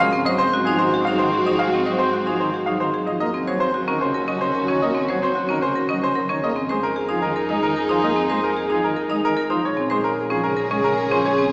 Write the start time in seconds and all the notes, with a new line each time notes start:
0.00 G#2 G#3 C4 F#4 F5
0.13 C4
0.25 F#3 F#4 C5 D#5
0.38 C4 C5
0.54 F#4
0.65 F3 D#4 G#4
0.78 D#3 C5
0.84 F#4
0.94 G#4
1.05 F#3 D#4 F5
1.11 F#4
1.18 D#3 C5
1.33 G#4
1.38 F#4
1.46 F3 D#4 D#5
1.59 G#3 F5
1.67 F#4
1.74 C4
1.86 F#3 C5 D#5
1.95 F#4
1.99 C4 C5
2.13 F#4
2.23 F3 D#4 F#4 G#4
2.39 D#3 C5
2.51 F#4 G#4
2.66 F#3 D#4 F5
2.79 D#3 F#4 C5
2.94 G#4
3.07 F3 D#4 D#5
3.20 D#2 A#3 C#4 F#4 D#5
3.34 C4
3.47 F#3 F#4 C5 C#5
3.60 C4 C5
3.74 F#4
3.87 D#3 C#4 A#4
4.01 C#3 F#4 C5
4.14 A#4
4.28 F#3 C#4 D#5
4.34 F#4
4.41 C#3 C5
4.55 A#4
4.61 F#4
4.68 D#3 C#4 C#5
4.82 A#3 D#5
4.89 F#4
4.95 C4
5.09 F#3 C5 C#5
5.17 F#4
5.23 C4 C5
5.35 F#4
5.46 D#3 C#4 F#4
5.50 A#4
5.62 C#3 C5
5.73 F#4 A#4
5.89 F#3 C#4 D#5
6.01 C#3 F#4 C5
6.16 A#4
6.29 D#3 C#4 C#5
6.41 F2 A#3 D#4 G#4 D#5
6.56 C4
6.69 G#3 G#4 C5
6.83 A#4
6.96 G#4
7.09 F3 D#4 G#4
7.22 D#3 A#4
7.26 G#4
7.36 A#4
7.49 G#3 D#4 D#5
7.55 G#4
7.63 D#3 A#4
7.76 A#4
7.81 G#4
7.89 F3 D#4 C5
8.02 A#3 D#5
8.09 G#4
8.16 C4
8.29 G#3 C5
8.38 G#4
8.43 A#4
8.57 G#4
8.65 G#4
8.70 F3 D#4 G#4
8.83 D#3 A#4
8.94 G#4 A#4
9.10 G#3 D#4 D#5
9.23 D#3 G#4 A#4
9.37 A#4
9.50 F3 D#4 C5
9.63 A#1 C#4 G#4 C#5
9.77 C4
9.90 G#3 G#4 C5
10.04 A#4
10.21 G#4
10.30 F3 C#4 G#4
10.43 C#3 A#4
10.48 G#4
10.57 A#4
10.70 G#3 C#4 C#5
10.76 G#4
10.84 C#3 A#4
10.98 A#4
11.04 G#4
11.10 F3 C#4 C5
11.25 C#5
11.32 G#4
11.38 C4